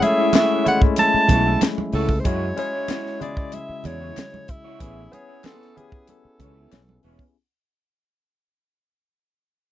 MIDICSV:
0, 0, Header, 1, 9, 480
1, 0, Start_track
1, 0, Key_signature, 3, "major"
1, 0, Tempo, 637620
1, 1696, Time_signature, 4, 2, 24, 8
1, 7313, End_track
2, 0, Start_track
2, 0, Title_t, "Alto saxophone"
2, 0, Program_c, 0, 65
2, 27, Note_on_c, 0, 76, 108
2, 261, Note_off_c, 0, 76, 0
2, 266, Note_on_c, 0, 76, 113
2, 484, Note_off_c, 0, 76, 0
2, 511, Note_on_c, 0, 78, 108
2, 616, Note_off_c, 0, 78, 0
2, 748, Note_on_c, 0, 81, 112
2, 1229, Note_off_c, 0, 81, 0
2, 1467, Note_on_c, 0, 69, 96
2, 1654, Note_on_c, 0, 72, 80
2, 1666, Note_off_c, 0, 69, 0
2, 1699, Note_on_c, 0, 73, 114
2, 1710, Note_off_c, 0, 72, 0
2, 1937, Note_off_c, 0, 73, 0
2, 1948, Note_on_c, 0, 73, 113
2, 2392, Note_off_c, 0, 73, 0
2, 2426, Note_on_c, 0, 74, 100
2, 2663, Note_on_c, 0, 76, 114
2, 2675, Note_off_c, 0, 74, 0
2, 2906, Note_on_c, 0, 73, 108
2, 2918, Note_off_c, 0, 76, 0
2, 3389, Note_on_c, 0, 64, 98
2, 3401, Note_off_c, 0, 73, 0
2, 3864, Note_on_c, 0, 73, 98
2, 3876, Note_off_c, 0, 64, 0
2, 4108, Note_on_c, 0, 69, 100
2, 4119, Note_off_c, 0, 73, 0
2, 4349, Note_on_c, 0, 68, 93
2, 4360, Note_off_c, 0, 69, 0
2, 4582, Note_off_c, 0, 68, 0
2, 4589, Note_on_c, 0, 69, 88
2, 5271, Note_off_c, 0, 69, 0
2, 7313, End_track
3, 0, Start_track
3, 0, Title_t, "Clean electric guitar"
3, 0, Program_c, 1, 27
3, 134, Note_on_c, 1, 76, 69
3, 137, Note_on_c, 1, 66, 59
3, 143, Note_on_c, 1, 64, 62
3, 145, Note_on_c, 1, 57, 52
3, 245, Note_off_c, 1, 57, 0
3, 250, Note_off_c, 1, 64, 0
3, 250, Note_off_c, 1, 76, 0
3, 252, Note_off_c, 1, 66, 0
3, 254, Note_on_c, 1, 57, 81
3, 259, Note_on_c, 1, 64, 80
3, 261, Note_on_c, 1, 66, 83
3, 264, Note_on_c, 1, 73, 88
3, 475, Note_off_c, 1, 57, 0
3, 478, Note_off_c, 1, 64, 0
3, 479, Note_off_c, 1, 66, 0
3, 481, Note_off_c, 1, 73, 0
3, 975, Note_on_c, 1, 57, 66
3, 978, Note_on_c, 1, 64, 62
3, 985, Note_on_c, 1, 66, 72
3, 987, Note_on_c, 1, 73, 74
3, 1090, Note_off_c, 1, 66, 0
3, 1091, Note_off_c, 1, 57, 0
3, 1092, Note_off_c, 1, 73, 0
3, 1093, Note_off_c, 1, 64, 0
3, 1095, Note_on_c, 1, 76, 57
3, 1099, Note_on_c, 1, 66, 52
3, 1103, Note_on_c, 1, 64, 46
3, 1108, Note_on_c, 1, 57, 50
3, 1212, Note_off_c, 1, 76, 0
3, 1214, Note_off_c, 1, 66, 0
3, 1215, Note_off_c, 1, 64, 0
3, 1218, Note_off_c, 1, 57, 0
3, 1456, Note_on_c, 1, 57, 80
3, 1462, Note_on_c, 1, 64, 87
3, 1465, Note_on_c, 1, 66, 93
3, 1469, Note_on_c, 1, 73, 91
3, 1567, Note_off_c, 1, 73, 0
3, 1573, Note_off_c, 1, 66, 0
3, 1577, Note_off_c, 1, 64, 0
3, 1604, Note_off_c, 1, 57, 0
3, 1696, Note_on_c, 1, 56, 82
3, 1700, Note_on_c, 1, 64, 83
3, 1705, Note_on_c, 1, 66, 92
3, 1709, Note_on_c, 1, 73, 99
3, 1844, Note_off_c, 1, 56, 0
3, 1846, Note_off_c, 1, 64, 0
3, 1848, Note_off_c, 1, 66, 0
3, 1851, Note_off_c, 1, 73, 0
3, 2053, Note_on_c, 1, 73, 61
3, 2058, Note_on_c, 1, 66, 59
3, 2063, Note_on_c, 1, 64, 57
3, 2066, Note_on_c, 1, 56, 58
3, 2162, Note_off_c, 1, 56, 0
3, 2167, Note_off_c, 1, 64, 0
3, 2170, Note_off_c, 1, 73, 0
3, 2171, Note_off_c, 1, 66, 0
3, 2171, Note_on_c, 1, 56, 84
3, 2176, Note_on_c, 1, 64, 84
3, 2180, Note_on_c, 1, 66, 93
3, 2183, Note_on_c, 1, 73, 89
3, 2394, Note_off_c, 1, 56, 0
3, 2397, Note_off_c, 1, 64, 0
3, 2399, Note_off_c, 1, 66, 0
3, 2401, Note_off_c, 1, 73, 0
3, 2896, Note_on_c, 1, 56, 61
3, 2901, Note_on_c, 1, 64, 63
3, 2904, Note_on_c, 1, 66, 66
3, 2907, Note_on_c, 1, 74, 60
3, 3011, Note_off_c, 1, 66, 0
3, 3012, Note_off_c, 1, 56, 0
3, 3012, Note_off_c, 1, 74, 0
3, 3015, Note_off_c, 1, 64, 0
3, 3015, Note_on_c, 1, 73, 57
3, 3020, Note_on_c, 1, 66, 57
3, 3023, Note_on_c, 1, 64, 56
3, 3027, Note_on_c, 1, 56, 52
3, 3126, Note_off_c, 1, 56, 0
3, 3130, Note_off_c, 1, 64, 0
3, 3131, Note_off_c, 1, 73, 0
3, 3134, Note_off_c, 1, 66, 0
3, 3495, Note_on_c, 1, 73, 85
3, 3498, Note_on_c, 1, 66, 75
3, 3503, Note_on_c, 1, 64, 73
3, 3507, Note_on_c, 1, 56, 71
3, 3612, Note_off_c, 1, 64, 0
3, 3614, Note_off_c, 1, 56, 0
3, 3617, Note_on_c, 1, 59, 78
3, 3620, Note_off_c, 1, 73, 0
3, 3621, Note_on_c, 1, 64, 85
3, 3622, Note_off_c, 1, 66, 0
3, 3625, Note_on_c, 1, 68, 90
3, 3629, Note_on_c, 1, 73, 80
3, 3764, Note_off_c, 1, 59, 0
3, 3766, Note_off_c, 1, 64, 0
3, 3769, Note_off_c, 1, 68, 0
3, 3771, Note_off_c, 1, 73, 0
3, 3978, Note_on_c, 1, 76, 66
3, 3982, Note_on_c, 1, 68, 60
3, 3985, Note_on_c, 1, 64, 50
3, 3989, Note_on_c, 1, 59, 49
3, 4085, Note_off_c, 1, 59, 0
3, 4089, Note_off_c, 1, 64, 0
3, 4093, Note_off_c, 1, 76, 0
3, 4094, Note_on_c, 1, 58, 87
3, 4095, Note_off_c, 1, 68, 0
3, 4098, Note_on_c, 1, 63, 86
3, 4103, Note_on_c, 1, 67, 89
3, 4106, Note_on_c, 1, 72, 88
3, 4185, Note_off_c, 1, 58, 0
3, 4185, Note_on_c, 1, 59, 87
3, 4188, Note_off_c, 1, 63, 0
3, 4188, Note_on_c, 1, 64, 86
3, 4193, Note_off_c, 1, 67, 0
3, 4193, Note_on_c, 1, 68, 89
3, 4197, Note_off_c, 1, 72, 0
3, 4197, Note_on_c, 1, 73, 88
3, 4316, Note_off_c, 1, 59, 0
3, 4318, Note_off_c, 1, 64, 0
3, 4320, Note_off_c, 1, 68, 0
3, 4322, Note_off_c, 1, 73, 0
3, 4814, Note_on_c, 1, 59, 60
3, 4819, Note_on_c, 1, 64, 60
3, 4824, Note_on_c, 1, 68, 63
3, 4827, Note_on_c, 1, 73, 68
3, 4929, Note_off_c, 1, 68, 0
3, 4931, Note_off_c, 1, 59, 0
3, 4932, Note_off_c, 1, 73, 0
3, 4933, Note_off_c, 1, 64, 0
3, 4935, Note_on_c, 1, 76, 56
3, 4938, Note_on_c, 1, 68, 59
3, 4943, Note_on_c, 1, 64, 52
3, 4946, Note_on_c, 1, 59, 47
3, 5051, Note_off_c, 1, 76, 0
3, 5053, Note_off_c, 1, 68, 0
3, 5055, Note_off_c, 1, 64, 0
3, 5057, Note_off_c, 1, 59, 0
3, 5296, Note_on_c, 1, 59, 82
3, 5300, Note_on_c, 1, 64, 90
3, 5303, Note_on_c, 1, 68, 86
3, 5307, Note_on_c, 1, 73, 86
3, 5406, Note_off_c, 1, 73, 0
3, 5413, Note_off_c, 1, 68, 0
3, 5415, Note_off_c, 1, 64, 0
3, 5443, Note_off_c, 1, 59, 0
3, 7313, End_track
4, 0, Start_track
4, 0, Title_t, "Tine electric piano"
4, 0, Program_c, 2, 4
4, 0, Control_c, 2, 64, 127
4, 0, Note_on_c, 2, 57, 71
4, 0, Note_on_c, 2, 61, 68
4, 0, Note_on_c, 2, 64, 70
4, 0, Note_on_c, 2, 68, 82
4, 1, Note_on_c, 2, 56, 64
4, 4, Note_off_c, 2, 61, 0
4, 4, Note_on_c, 2, 61, 72
4, 12, Note_off_c, 2, 64, 0
4, 12, Note_on_c, 2, 64, 77
4, 20, Note_off_c, 2, 68, 0
4, 20, Note_on_c, 2, 68, 91
4, 49, Note_off_c, 2, 57, 0
4, 49, Note_on_c, 2, 57, 79
4, 367, Note_off_c, 2, 61, 0
4, 370, Note_off_c, 2, 64, 0
4, 374, Note_off_c, 2, 68, 0
4, 389, Note_off_c, 2, 57, 0
4, 483, Note_on_c, 2, 57, 82
4, 488, Note_on_c, 2, 61, 73
4, 495, Note_on_c, 2, 64, 79
4, 503, Note_off_c, 2, 56, 0
4, 503, Note_on_c, 2, 56, 93
4, 1203, Note_off_c, 2, 57, 0
4, 1205, Note_off_c, 2, 61, 0
4, 1209, Note_off_c, 2, 64, 0
4, 1213, Note_off_c, 2, 56, 0
4, 1685, Note_on_c, 2, 56, 71
4, 1692, Note_on_c, 2, 61, 70
4, 1699, Note_on_c, 2, 64, 65
4, 1706, Control_c, 2, 64, 0
4, 1706, Note_on_c, 2, 66, 81
4, 1834, Control_c, 2, 64, 127
4, 1869, Note_off_c, 2, 56, 0
4, 1872, Note_off_c, 2, 61, 0
4, 1876, Note_off_c, 2, 64, 0
4, 1879, Note_off_c, 2, 66, 0
4, 1927, Note_on_c, 2, 56, 77
4, 1934, Note_on_c, 2, 61, 78
4, 1941, Note_on_c, 2, 64, 72
4, 1946, Note_on_c, 2, 68, 91
4, 2288, Note_off_c, 2, 56, 0
4, 2292, Note_off_c, 2, 61, 0
4, 2295, Note_off_c, 2, 64, 0
4, 2298, Note_off_c, 2, 68, 0
4, 2405, Note_on_c, 2, 56, 79
4, 2413, Note_on_c, 2, 49, 75
4, 2419, Note_on_c, 2, 64, 75
4, 2425, Note_on_c, 2, 68, 90
4, 3124, Note_off_c, 2, 56, 0
4, 3128, Note_off_c, 2, 49, 0
4, 3131, Note_off_c, 2, 64, 0
4, 3134, Note_off_c, 2, 68, 0
4, 3607, Note_on_c, 2, 59, 70
4, 3612, Note_on_c, 2, 61, 66
4, 3620, Note_on_c, 2, 64, 67
4, 3626, Note_on_c, 2, 68, 78
4, 3627, Control_c, 2, 64, 0
4, 3735, Control_c, 2, 64, 127
4, 3790, Note_off_c, 2, 59, 0
4, 3792, Note_off_c, 2, 61, 0
4, 3796, Note_off_c, 2, 64, 0
4, 3799, Note_off_c, 2, 68, 0
4, 3850, Note_on_c, 2, 59, 81
4, 3856, Note_on_c, 2, 61, 71
4, 3863, Note_on_c, 2, 64, 68
4, 3870, Note_on_c, 2, 68, 83
4, 4210, Note_off_c, 2, 59, 0
4, 4212, Note_off_c, 2, 61, 0
4, 4216, Note_off_c, 2, 64, 0
4, 4219, Note_off_c, 2, 68, 0
4, 4330, Note_on_c, 2, 59, 79
4, 4337, Note_on_c, 2, 61, 70
4, 4341, Note_on_c, 2, 64, 71
4, 4349, Note_on_c, 2, 67, 68
4, 4391, Note_off_c, 2, 67, 0
4, 4397, Note_on_c, 2, 80, 82
4, 5046, Note_off_c, 2, 59, 0
4, 5049, Note_off_c, 2, 61, 0
4, 5051, Note_off_c, 2, 64, 0
4, 5079, Note_off_c, 2, 80, 0
4, 5545, Control_c, 2, 64, 0
4, 7313, End_track
5, 0, Start_track
5, 0, Title_t, "Trombone section"
5, 0, Program_c, 3, 61
5, 4812, Note_on_c, 3, 52, 72
5, 4812, Note_on_c, 3, 61, 85
5, 4813, Note_on_c, 3, 56, 75
5, 4915, Note_off_c, 3, 52, 0
5, 4915, Note_off_c, 3, 61, 0
5, 4916, Note_off_c, 3, 56, 0
5, 5051, Note_on_c, 3, 52, 91
5, 5051, Note_on_c, 3, 56, 86
5, 5053, Note_on_c, 3, 61, 96
5, 5129, Note_off_c, 3, 52, 0
5, 5129, Note_off_c, 3, 56, 0
5, 5130, Note_off_c, 3, 61, 0
5, 5291, Note_on_c, 3, 52, 82
5, 5292, Note_on_c, 3, 56, 83
5, 5292, Note_on_c, 3, 61, 94
5, 5445, Note_off_c, 3, 52, 0
5, 5446, Note_off_c, 3, 56, 0
5, 5446, Note_off_c, 3, 61, 0
5, 7313, End_track
6, 0, Start_track
6, 0, Title_t, "Fingered electric bass"
6, 0, Program_c, 4, 33
6, 975, Note_on_c, 4, 35, 89
6, 1168, Note_off_c, 4, 35, 0
6, 1456, Note_on_c, 4, 37, 107
6, 1649, Note_off_c, 4, 37, 0
6, 1698, Note_on_c, 4, 42, 121
6, 1890, Note_off_c, 4, 42, 0
6, 2899, Note_on_c, 4, 40, 104
6, 3091, Note_off_c, 4, 40, 0
6, 3620, Note_on_c, 4, 33, 110
6, 3811, Note_off_c, 4, 33, 0
6, 4819, Note_on_c, 4, 37, 93
6, 5010, Note_off_c, 4, 37, 0
6, 5063, Note_on_c, 4, 35, 90
6, 5252, Note_off_c, 4, 35, 0
6, 5303, Note_on_c, 4, 28, 100
6, 5396, Note_off_c, 4, 28, 0
6, 7313, End_track
7, 0, Start_track
7, 0, Title_t, "Muted clean electric guitar strokes"
7, 16, Note_on_c, 9, 29, 39
7, 92, Note_off_c, 9, 29, 0
7, 495, Note_on_c, 9, 29, 50
7, 570, Note_off_c, 9, 29, 0
7, 614, Note_on_c, 9, 29, 49
7, 690, Note_off_c, 9, 29, 0
7, 735, Note_on_c, 9, 29, 49
7, 810, Note_off_c, 9, 29, 0
7, 855, Note_on_c, 9, 29, 45
7, 930, Note_off_c, 9, 29, 0
7, 1337, Note_on_c, 9, 29, 48
7, 1412, Note_off_c, 9, 29, 0
7, 1576, Note_on_c, 9, 29, 42
7, 1652, Note_off_c, 9, 29, 0
7, 1933, Note_on_c, 9, 29, 47
7, 2009, Note_off_c, 9, 29, 0
7, 2413, Note_on_c, 9, 29, 41
7, 2488, Note_off_c, 9, 29, 0
7, 2534, Note_on_c, 9, 29, 45
7, 2609, Note_off_c, 9, 29, 0
7, 2653, Note_on_c, 9, 29, 39
7, 2728, Note_off_c, 9, 29, 0
7, 2774, Note_on_c, 9, 29, 41
7, 2850, Note_off_c, 9, 29, 0
7, 3135, Note_on_c, 9, 29, 41
7, 3210, Note_off_c, 9, 29, 0
7, 3256, Note_on_c, 9, 29, 41
7, 3331, Note_off_c, 9, 29, 0
7, 3858, Note_on_c, 9, 29, 37
7, 3934, Note_off_c, 9, 29, 0
7, 4336, Note_on_c, 9, 29, 42
7, 4411, Note_off_c, 9, 29, 0
7, 4457, Note_on_c, 9, 29, 49
7, 4533, Note_off_c, 9, 29, 0
7, 4578, Note_on_c, 9, 29, 38
7, 4654, Note_off_c, 9, 29, 0
7, 4698, Note_on_c, 9, 29, 45
7, 4773, Note_off_c, 9, 29, 0
7, 5177, Note_on_c, 9, 29, 48
7, 5253, Note_off_c, 9, 29, 0
7, 5415, Note_on_c, 9, 29, 44
7, 5491, Note_off_c, 9, 29, 0
7, 7313, End_track
8, 0, Start_track
8, 0, Title_t, "Muted fingered electric bass strokes"
8, 859, Note_on_c, 9, 29, 45
8, 934, Note_off_c, 9, 29, 0
8, 2779, Note_on_c, 9, 29, 45
8, 2855, Note_off_c, 9, 29, 0
8, 4704, Note_on_c, 9, 29, 47
8, 4779, Note_off_c, 9, 29, 0
8, 7313, End_track
9, 0, Start_track
9, 0, Title_t, "Drums"
9, 18, Note_on_c, 9, 62, 53
9, 20, Note_on_c, 9, 42, 85
9, 93, Note_off_c, 9, 62, 0
9, 95, Note_off_c, 9, 42, 0
9, 248, Note_on_c, 9, 63, 70
9, 256, Note_on_c, 9, 39, 86
9, 260, Note_on_c, 9, 42, 75
9, 267, Note_on_c, 9, 38, 105
9, 323, Note_off_c, 9, 63, 0
9, 331, Note_off_c, 9, 39, 0
9, 335, Note_off_c, 9, 42, 0
9, 342, Note_off_c, 9, 38, 0
9, 498, Note_on_c, 9, 64, 64
9, 501, Note_on_c, 9, 42, 85
9, 574, Note_off_c, 9, 64, 0
9, 576, Note_off_c, 9, 42, 0
9, 614, Note_on_c, 9, 36, 103
9, 689, Note_off_c, 9, 36, 0
9, 725, Note_on_c, 9, 42, 98
9, 740, Note_on_c, 9, 62, 52
9, 800, Note_off_c, 9, 42, 0
9, 815, Note_off_c, 9, 62, 0
9, 968, Note_on_c, 9, 62, 36
9, 968, Note_on_c, 9, 64, 82
9, 973, Note_on_c, 9, 36, 87
9, 973, Note_on_c, 9, 42, 86
9, 1043, Note_off_c, 9, 62, 0
9, 1043, Note_off_c, 9, 64, 0
9, 1048, Note_off_c, 9, 36, 0
9, 1048, Note_off_c, 9, 42, 0
9, 1216, Note_on_c, 9, 42, 103
9, 1217, Note_on_c, 9, 63, 75
9, 1219, Note_on_c, 9, 39, 94
9, 1227, Note_on_c, 9, 38, 115
9, 1292, Note_off_c, 9, 42, 0
9, 1292, Note_off_c, 9, 63, 0
9, 1295, Note_off_c, 9, 39, 0
9, 1302, Note_off_c, 9, 38, 0
9, 1341, Note_on_c, 9, 63, 76
9, 1416, Note_off_c, 9, 63, 0
9, 1449, Note_on_c, 9, 46, 48
9, 1524, Note_off_c, 9, 46, 0
9, 1571, Note_on_c, 9, 36, 91
9, 1646, Note_off_c, 9, 36, 0
9, 1693, Note_on_c, 9, 42, 103
9, 1694, Note_on_c, 9, 36, 114
9, 1768, Note_off_c, 9, 42, 0
9, 1770, Note_off_c, 9, 36, 0
9, 1939, Note_on_c, 9, 42, 89
9, 1940, Note_on_c, 9, 62, 50
9, 2015, Note_off_c, 9, 42, 0
9, 2015, Note_off_c, 9, 62, 0
9, 2171, Note_on_c, 9, 63, 71
9, 2177, Note_on_c, 9, 39, 90
9, 2182, Note_on_c, 9, 42, 75
9, 2189, Note_on_c, 9, 38, 102
9, 2246, Note_off_c, 9, 63, 0
9, 2253, Note_off_c, 9, 39, 0
9, 2257, Note_off_c, 9, 42, 0
9, 2264, Note_off_c, 9, 38, 0
9, 2305, Note_on_c, 9, 38, 38
9, 2380, Note_off_c, 9, 38, 0
9, 2417, Note_on_c, 9, 64, 67
9, 2422, Note_on_c, 9, 42, 83
9, 2493, Note_off_c, 9, 64, 0
9, 2497, Note_off_c, 9, 42, 0
9, 2535, Note_on_c, 9, 36, 99
9, 2611, Note_off_c, 9, 36, 0
9, 2649, Note_on_c, 9, 42, 97
9, 2661, Note_on_c, 9, 62, 51
9, 2724, Note_off_c, 9, 42, 0
9, 2736, Note_off_c, 9, 62, 0
9, 2890, Note_on_c, 9, 64, 80
9, 2898, Note_on_c, 9, 42, 86
9, 2965, Note_off_c, 9, 64, 0
9, 2974, Note_off_c, 9, 42, 0
9, 3140, Note_on_c, 9, 39, 89
9, 3142, Note_on_c, 9, 42, 98
9, 3144, Note_on_c, 9, 63, 83
9, 3152, Note_on_c, 9, 38, 109
9, 3215, Note_off_c, 9, 39, 0
9, 3217, Note_off_c, 9, 42, 0
9, 3219, Note_off_c, 9, 63, 0
9, 3228, Note_off_c, 9, 38, 0
9, 3266, Note_on_c, 9, 63, 77
9, 3341, Note_off_c, 9, 63, 0
9, 3374, Note_on_c, 9, 42, 68
9, 3379, Note_on_c, 9, 36, 99
9, 3449, Note_off_c, 9, 42, 0
9, 3454, Note_off_c, 9, 36, 0
9, 3616, Note_on_c, 9, 36, 106
9, 3617, Note_on_c, 9, 42, 100
9, 3692, Note_off_c, 9, 36, 0
9, 3692, Note_off_c, 9, 42, 0
9, 3863, Note_on_c, 9, 42, 80
9, 3863, Note_on_c, 9, 62, 52
9, 3938, Note_off_c, 9, 42, 0
9, 3939, Note_off_c, 9, 62, 0
9, 4096, Note_on_c, 9, 39, 92
9, 4096, Note_on_c, 9, 63, 74
9, 4105, Note_on_c, 9, 42, 73
9, 4112, Note_on_c, 9, 38, 110
9, 4171, Note_off_c, 9, 39, 0
9, 4172, Note_off_c, 9, 63, 0
9, 4181, Note_off_c, 9, 42, 0
9, 4187, Note_off_c, 9, 38, 0
9, 4230, Note_on_c, 9, 38, 37
9, 4305, Note_off_c, 9, 38, 0
9, 4344, Note_on_c, 9, 64, 72
9, 4347, Note_on_c, 9, 42, 83
9, 4419, Note_off_c, 9, 64, 0
9, 4423, Note_off_c, 9, 42, 0
9, 4457, Note_on_c, 9, 36, 101
9, 4533, Note_off_c, 9, 36, 0
9, 4573, Note_on_c, 9, 42, 98
9, 4582, Note_on_c, 9, 62, 51
9, 4649, Note_off_c, 9, 42, 0
9, 4657, Note_off_c, 9, 62, 0
9, 4815, Note_on_c, 9, 62, 36
9, 4815, Note_on_c, 9, 64, 83
9, 4816, Note_on_c, 9, 36, 88
9, 4821, Note_on_c, 9, 42, 84
9, 4890, Note_off_c, 9, 62, 0
9, 4890, Note_off_c, 9, 64, 0
9, 4891, Note_off_c, 9, 36, 0
9, 4896, Note_off_c, 9, 42, 0
9, 5061, Note_on_c, 9, 39, 87
9, 5061, Note_on_c, 9, 42, 108
9, 5065, Note_on_c, 9, 63, 81
9, 5072, Note_on_c, 9, 38, 112
9, 5136, Note_off_c, 9, 39, 0
9, 5136, Note_off_c, 9, 42, 0
9, 5140, Note_off_c, 9, 63, 0
9, 5147, Note_off_c, 9, 38, 0
9, 5186, Note_on_c, 9, 63, 82
9, 5261, Note_off_c, 9, 63, 0
9, 5291, Note_on_c, 9, 46, 49
9, 5366, Note_off_c, 9, 46, 0
9, 5412, Note_on_c, 9, 36, 86
9, 5488, Note_off_c, 9, 36, 0
9, 7313, End_track
0, 0, End_of_file